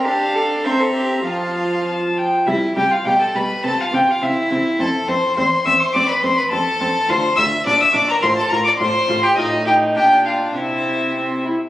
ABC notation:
X:1
M:2/4
L:1/16
Q:1/4=104
K:F
V:1 name="Violin"
a4 b4 | a4 a2 g2 | [K:C] e2 g f g a b2 | a f g f e4 |
a2 c'2 c'2 e' c' | d' b c' b a4 | [K:F] c'2 e'2 d' e' d' b | c' a b d' c'3 g |
_e2 g2 g2 f2 | e6 z2 |]
V:2 name="Violin"
f4 e4 | f6 z2 | [K:C] E2 G F G A B2 | A F G F E4 |
A2 c2 c2 e c | d B c B A4 | [K:F] c2 e2 d e d B | c A B d c3 G |
_E2 G2 G2 F2 | E6 z2 |]
V:3 name="Viola"
D4 C4 | F,6 z2 | [K:C] G,2 G,2 G,2 G,2 | C2 C2 C2 C2 |
C2 C2 C2 C2 | C2 C2 C2 C2 | [K:F] F2 F2 D2 D2 | F2 F2 F2 F2 |
F2 _E2 D4 | C4 C2 E2 |]
V:4 name="Cello" clef=bass
G2 A2 c A G2 | F4 z4 | [K:C] C,2 C,2 B,,2 B,,2 | C,2 C,2 C,2 C,2 |
F,,2 F,,2 E,,2 E,,2 | F,,2 F,,2 F,,2 F,,2 | [K:F] D,,2 D,,2 B,,2 B,,2 | A,,2 A,,2 A,,2 A,,2 |
A,,4 B,,4 | C,6 z2 |]